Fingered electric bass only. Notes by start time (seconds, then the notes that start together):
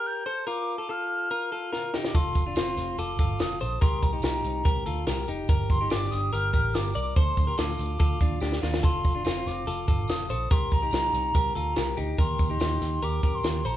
2.15 F1
2.35 F1
2.57 F1
2.78 F1
2.99 F1
3.19 G1
3.40 F1
3.61 A#1
3.82 C2
4.03 C2
4.23 C2
4.44 C2
4.66 C2
4.86 D2
5.07 C2
5.28 F1
5.49 G1
5.70 G1
5.92 G1
6.12 G1
6.33 G1
6.54 A1
6.75 G1
6.95 C2
7.16 D2
7.37 D2
7.59 D2
7.79 D2
8.00 D2
8.21 D#2
8.41 D2
8.63 D#2
8.84 F1
9.05 F1
9.26 F1
9.47 F1
9.67 F1
9.88 G1
10.09 F1
10.30 A#1
10.51 C2
10.72 C2
10.93 C2
11.13 C2
11.35 C2
11.55 D2
11.77 C2
11.98 D2
12.18 D#2
12.39 D#2
12.61 D#2
12.81 D#2
13.02 D#2
13.23 F2
13.44 D#2
13.65 A#1